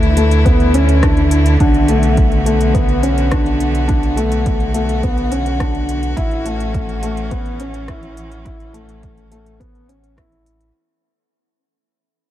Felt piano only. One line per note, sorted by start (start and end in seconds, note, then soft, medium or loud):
0.17 0.42 A3 medium
0.45 0.71 B3 medium
0.74 0.99 C#4 medium
1.03 1.53 D4 medium
1.60 1.85 D4 loud
1.89 2.39 A3 medium
2.46 2.71 A3 medium
2.74 2.99 B3 medium
3.03 3.28 C#4 medium
3.31 3.81 D4 medium
3.88 4.13 D4 loud
4.17 4.67 A3 medium
4.74 4.99 A3 medium
5.03 5.28 B3 medium
5.32 5.57 C#4 medium
5.59 6.10 D4 medium
6.17 6.42 E4 loud
6.46 6.96 A3 medium
7.03 7.28 A3 medium
7.31 7.56 B3 medium
7.60 7.85 C#4 medium
7.88 8.39 E4 medium
8.45 8.71 E4 loud
8.73 9.24 A3 medium
9.32 9.57 A3 medium
9.60 9.85 B3 medium
9.89 10.14 C#4 medium
10.17 10.67 E4 medium